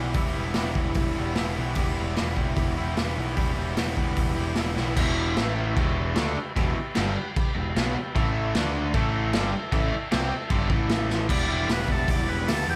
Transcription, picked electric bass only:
Already playing: B1
0.14 E1
0.36 E1
0.56 E1
0.76 E1
0.95 E1
1.19 E1
1.39 E1
1.58 B1
1.75 E1
2.00 E1
2.20 E1
2.37 E1
2.56 E1
2.79 E1
2.97 E1
3.18 B1
3.37 E1
3.57 E1
3.77 E1
3.97 E1
4.17 E1
4.38 E1
4.57 E1
4.77 B1
4.97 E1
5.36 A1
5.76 E1
6.16 D2
6.39 muted picked electric bass stroke
6.57 E1
6.97 G1
7.56 E1
7.76 B1
7.97 muted picked electric bass stroke
8.15 A1
8.55 D2
8.95 A1
9.35 G1
9.55 muted picked electric bass stroke
9.72 A1
9.94 muted picked electric bass stroke
10.13 C2
10.50 G1
10.71 A1
11.29 E1
11.49 E1
11.68 E1
11.88 E1
12.08 E1
12.30 E1
12.49 D2
12.68 E2

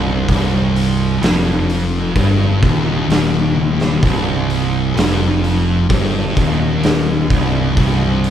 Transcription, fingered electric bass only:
Already playing: C1
0.29 C1
1.21 F1
2.16 G1
2.63 D#1
3.09 D#1
4.03 C1
4.96 F1
5.90 G1
6.37 D#1
7.30 C1
7.78 C1

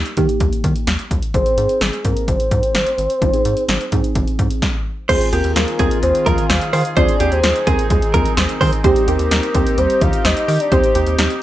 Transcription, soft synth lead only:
1.34 C5
1.81 G#4
2.04 A#4
2.28 C5
5.09 G#4
5.33 A#4
6.03 C5
6.26 F5
6.97 D5
7.32 C5
7.67 A#4
7.90 G#4
8.84 G4
9.08 A#4
9.78 C5
10.02 F5
10.25 D#5
10.48 D#5
10.60 D5
10.72 C5

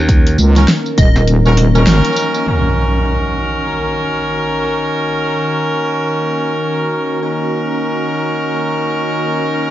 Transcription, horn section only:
0.56 C#4 D#4 F#4 A#4
1.45 C#4 D#4 F#4 A#4
1.75 C#4 D#4 F#4 A#4
2.46 C#4 D#4 F#4 A#4
7.21 C#4 D#4 F#4 A#4

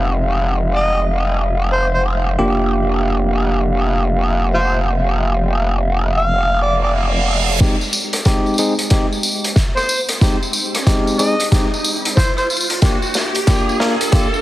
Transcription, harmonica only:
0.75 D#5
1.73 C5
1.94 C5
4.54 F4 C5
6.17 F5
6.62 D5
6.83 D5
9.76 C5
11.19 D#5
12.17 C5
12.38 C5

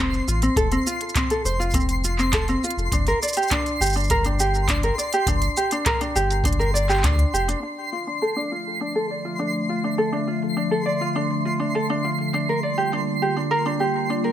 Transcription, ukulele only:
0.00 C4
0.28 F4
0.43 C4
0.57 A4
0.72 C4
0.87 F4
1.17 C4
1.31 A4
1.45 C5
1.60 F4
1.74 C4
2.04 F4
2.19 C4
2.34 A4
2.49 C4
2.64 F4
2.93 D4
3.08 A#4
3.23 D5
3.37 G4
3.52 D4
3.81 G4
3.96 D4
4.11 A#4
4.26 D4
4.40 G4
4.69 D4
4.84 A#4
4.98 D5
5.14 G4
5.28 D4
5.57 G4
5.72 D4
5.86 A#4
6.01 D4
6.16 G4
6.45 D4
6.59 A#4
6.74 D5
6.89 G4
7.04 D4
7.34 G4
7.48 D4
7.63 D4
7.92 F4
8.07 D4
8.22 A4
8.36 D4
8.52 F4
8.81 D4
8.95 A4
9.10 D5
9.25 F4
9.39 D4
9.69 F4
9.84 D4
9.98 A4
10.12 D4
10.28 F4
10.57 D4
10.71 A4
10.86 D5
11.01 F4
11.16 D4
11.45 F4
11.60 D4
11.75 A4
11.90 D4
12.04 F4
12.34 D4
12.49 A#4
12.63 D5
12.78 G4
12.93 D4
13.22 G4
13.36 D4
13.51 A#4
13.66 D4
13.80 G4
14.10 D4
14.24 A#4

